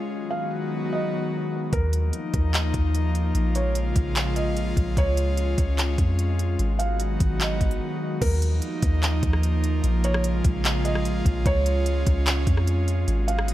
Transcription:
0.00 1.69 G#3 medium
0.11 1.71 D#3 medium
0.11 1.71 F#3 medium
0.11 1.71 B3 medium
0.11 1.71 F#4 medium
0.30 0.50 F5 medium
0.92 1.69 D#5 medium
1.73 2.12 D#2 loud
1.73 4.94 F3 medium
1.73 4.94 A#3 medium
1.73 3.34 D#4 medium
1.73 3.31 A#4 medium
1.73 kick loud
1.73 closed hi-hat medium
1.93 closed hi-hat medium
2.13 closed hi-hat medium
2.34 2.73 D#2 loud
2.34 kick medium
2.34 closed hi-hat medium
2.54 clap loud
2.54 closed hi-hat medium
2.74 3.33 D#2 loud
2.74 kick medium
2.74 closed hi-hat medium
2.95 closed hi-hat medium
3.15 closed hi-hat medium
3.35 3.93 A#1 loud
3.35 4.96 C#3 medium
3.35 8.18 G#3 medium
3.35 6.56 F4 medium
3.35 closed hi-hat medium
3.55 3.75 C#5 medium
3.55 closed hi-hat medium
3.75 closed hi-hat medium
3.96 4.74 A#1 loud
3.96 kick medium
3.96 closed hi-hat medium
4.16 clap loud
4.16 closed hi-hat medium
4.36 4.93 D#5 medium
4.36 closed hi-hat medium
4.57 closed hi-hat medium
4.77 4.96 A#1 loud
4.77 kick medium
4.77 closed hi-hat medium
4.97 5.55 C#2 loud
4.97 6.58 C#4 medium
4.97 6.56 C#5 loud
4.97 kick loud
4.97 closed hi-hat medium
5.17 closed hi-hat medium
5.37 closed hi-hat medium
5.58 5.97 C#2 medium
5.58 kick loud
5.58 closed hi-hat medium
5.78 clap loud
5.78 closed hi-hat medium
5.98 6.57 F2 loud
5.98 kick medium
5.98 closed hi-hat medium
6.19 closed hi-hat medium
6.39 closed hi-hat medium
6.59 7.18 G#1 loud
6.59 8.20 D#3 medium
6.59 8.20 F#3 medium
6.59 8.20 B3 medium
6.59 8.20 F#4 medium
6.59 closed hi-hat medium
6.79 6.98 F5 medium
6.79 closed hi-hat medium
7.00 closed hi-hat medium
7.20 7.59 G#1 loud
7.20 kick loud
7.20 closed hi-hat medium
7.41 8.18 D#5 medium
7.41 clap loud
7.41 closed hi-hat medium
7.61 7.80 G#1 loud
7.61 kick medium
7.61 closed hi-hat medium
7.71 closed hi-hat soft
8.21 8.60 D#2 loud
8.21 11.43 F3 medium
8.21 11.43 A#3 medium
8.21 9.82 D#4 medium
8.21 9.80 A#4 medium
8.21 kick loud
8.21 closed hi-hat medium
8.21 crash loud
8.42 closed hi-hat medium
8.62 closed hi-hat medium
8.82 9.21 D#2 loud
8.82 kick loud
8.82 closed hi-hat medium
9.03 clap loud
9.03 closed hi-hat medium
9.23 9.81 D#2 loud
9.23 kick loud
9.23 closed hi-hat medium
9.33 cross-stick medium
9.43 closed hi-hat medium
9.64 closed hi-hat medium
9.84 10.42 A#1 loud
9.84 11.44 C#3 medium
9.84 13.05 G#3 medium
9.84 13.05 F4 medium
9.84 closed hi-hat medium
10.04 10.23 C#5 medium
10.04 closed hi-hat medium
10.14 cross-stick loud
10.24 closed hi-hat medium
10.44 11.22 A#1 medium
10.44 kick loud
10.44 closed hi-hat medium
10.65 clap loud
10.65 closed hi-hat medium
10.85 11.42 D#5 medium
10.85 closed hi-hat medium
10.95 cross-stick medium
11.05 closed hi-hat medium
11.26 11.45 A#1 loud
11.26 kick loud
11.26 closed hi-hat medium
11.46 12.04 C#2 loud
11.46 13.07 C#4 medium
11.46 13.04 C#5 loud
11.46 kick loud
11.46 closed hi-hat medium
11.66 closed hi-hat medium
11.86 closed hi-hat medium
12.07 12.46 C#2 loud
12.07 kick loud
12.07 closed hi-hat medium
12.27 clap loud
12.27 closed hi-hat medium
12.47 13.05 F2 loud
12.47 kick loud
12.47 closed hi-hat medium
12.57 cross-stick medium
12.67 closed hi-hat medium
12.88 closed hi-hat medium
13.08 13.54 G#1 loud
13.08 13.54 D#3 medium
13.08 13.54 F#3 medium
13.08 13.54 G#3 medium
13.08 13.54 B3 medium
13.08 13.54 F#4 medium
13.08 closed hi-hat medium
13.28 13.47 F5 medium
13.28 closed hi-hat medium
13.39 cross-stick loud
13.48 closed hi-hat medium

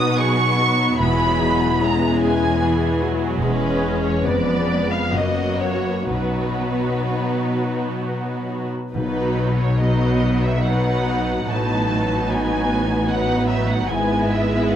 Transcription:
0.00 0.99 B2 medium
0.00 1.02 B2 soft
0.00 0.18 F#3 medium
0.00 0.95 F#3 soft
0.00 1.02 F#3 soft
0.00 3.42 B3 medium
0.00 0.56 D#4 soft
0.00 0.98 D#4 soft
0.00 0.15 F#4 soft
0.00 0.57 F#4 soft
0.00 0.16 B4 soft
0.00 2.19 B4 soft
0.00 0.16 D#6 medium
0.17 1.79 F#3 medium
0.17 1.02 F#4 soft
0.17 0.58 G#4 medium
0.17 0.98 C#6 medium
0.57 1.02 D#4 soft
0.57 0.99 F#4 medium
0.98 1.77 E1 medium
0.98 3.41 E2 medium
0.98 3.39 E2 medium
0.98 5.13 G#3 soft
0.98 1.39 E4 medium
0.98 3.26 E4 medium
0.98 1.79 G#4 soft
0.98 1.79 B5 medium
1.39 3.45 B2 soft
1.39 1.81 D#4 medium
1.80 2.62 G#3 medium
1.80 2.61 C#4 soft
1.80 3.00 E4 soft
1.80 3.40 G#4 medium
1.80 2.22 A#5 medium
2.20 3.45 B4 soft
2.20 3.01 G#5 medium
2.60 3.02 E3 medium
2.60 4.22 B3 medium
2.60 3.82 G#4 soft
3.01 3.42 F#3 medium
3.01 4.28 E4 soft
3.41 4.20 E1 medium
3.41 4.28 E2 medium
3.41 4.24 E2 medium
3.41 4.22 G#3 medium
3.41 4.24 C#4 medium
3.41 4.23 C#4 medium
3.41 4.22 G#4 soft
3.41 4.00 B4 medium
3.82 4.28 C#4 soft
3.82 4.67 G#4 soft
4.04 4.25 C#5 medium
4.24 5.09 F1 medium
4.24 5.16 F2 soft
4.24 5.14 F2 soft
4.24 5.11 G#3 soft
4.24 6.06 B3 soft
4.24 5.11 B3 soft
4.24 5.13 B3 soft
4.24 5.13 B4 soft
4.24 4.91 D5 medium
4.67 5.16 B3 soft
4.67 5.17 G#4 soft
4.90 5.13 F5 medium
5.12 6.06 F#1 soft
5.12 6.14 F#2 soft
5.12 6.10 F#2 soft
5.12 6.07 F#3 soft
5.12 8.57 F#3 medium
5.12 6.10 A#3 soft
5.12 6.08 F#4 soft
5.12 5.60 D#5 medium
5.58 6.14 C#4 soft
5.58 8.01 F#4 soft
5.58 6.09 C#5 medium
6.08 7.05 B1 soft
6.08 8.93 B2 soft
6.08 8.70 B2 soft
6.08 8.69 F#3 soft
6.08 8.69 B3 soft
6.08 8.74 D#4 soft
6.08 8.58 D#4 soft
6.08 8.70 F#4 soft
6.08 8.46 B4 medium
6.60 9.35 F#3 soft
7.09 8.47 D#4 soft
7.56 10.19 B4 soft
8.02 10.60 F#4 soft
8.49 9.78 D#4 soft
8.92 11.43 B1 soft
8.92 11.50 B2 soft
8.92 11.43 B2 medium
8.92 10.17 B2 medium
8.92 9.76 F#3 soft
8.92 11.43 F#3 soft
8.92 9.75 B3 soft
8.92 9.75 D#4 soft
8.92 13.86 D#4 soft
8.92 9.74 B4 soft
8.96 9.55 B4 medium
9.36 13.26 F#3 soft
9.59 9.79 C#5 medium
9.77 10.61 F#3 soft
9.77 10.61 B3 soft
9.77 10.59 D#4 soft
9.77 11.03 D#4 soft
9.77 10.60 B4 soft
9.77 10.42 D#5 medium
10.20 12.67 B4 soft
10.44 10.63 E5 medium
10.61 11.45 F#3 soft
10.61 11.46 B3 soft
10.61 11.45 D#4 soft
10.61 13.07 F#4 soft
10.61 11.45 B4 medium
10.61 11.48 F#5 medium
11.04 12.27 D#4 soft
11.45 13.86 A1 soft
11.45 13.93 A2 soft
11.45 13.86 A2 soft
11.45 13.06 F#3 medium
11.45 14.76 B3 soft
11.45 13.07 B3 medium
11.45 13.06 D#4 soft
11.45 13.06 B4 soft
11.50 12.30 A5 medium
11.88 13.93 A3 soft
12.28 13.47 D#4 soft
12.28 13.10 G#5 medium
12.69 14.76 B4 soft
13.08 13.89 F#3 soft
13.08 13.89 B3 soft
13.08 13.89 D#4 medium
13.08 13.93 F#4 soft
13.08 13.88 B4 soft
13.08 13.49 F#5 medium
13.48 13.93 D#4 soft
13.48 13.68 E5 medium
13.69 13.90 F#5 medium
13.87 14.76 G#1 medium
13.87 14.76 G#2 medium
13.87 14.76 G#3 medium
13.87 14.76 B3 medium
13.87 14.76 E4 soft
13.87 14.30 G#5 medium
13.91 14.76 E4 medium
13.91 14.76 B4 medium
14.31 14.76 G#3 soft
14.31 14.73 E5 medium
14.71 14.76 F#5 medium

